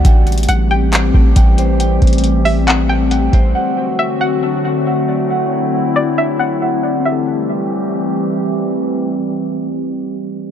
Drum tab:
HH |x---xxxxx-------x-------x---x---|x---xxxxx---o---x-------x---x---|--------------------------------|--------------------------------|
CP |----------------x---------------|----------------x---------------|--------------------------------|--------------------------------|
BD |o-------------------o---o-------|----o-----------------------o---|--------------------------------|--------------------------------|

HH |--------------------------------|--------------------------------|
CP |--------------------------------|--------------------------------|
BD |--------------------------------|--------------------------------|